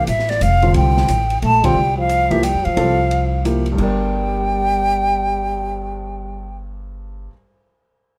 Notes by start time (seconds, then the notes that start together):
0.07 A1 E5, hi-hat pedal, ride
0.19 snare
0.29 D5, snare, ride
0.41 F1 F5, hi-hat pedal, ride
0.62 D3 G3 C4 F4, ride
0.74 C2 G5, ride
0.97 snare
1.08 A1, hi-hat pedal, ride
1.30 ride
1.42 A#1 A3 A5, ride
1.64 D3 G3 C4 F4 G5, kick, ride
1.75 C2
1.98 F3 F5
2.09 hi-hat pedal, ride
2.30 E3 F3 A#3 E4 G4 E5, kick, ride
2.43 G3 G5, hi-hat pedal, ride
2.55 F2
2.65 G2 F3 F5, ride
2.76 C2 G3 C4 F4 A4, ride
3.11 ride
3.45 F3 A#3 E4 G4, hi-hat pedal, ride
3.66 ride
3.72 G2 G3
3.78 G1 G3 D4 A#4 G5, kick, crash
3.83 D5
4.00 cymbal swell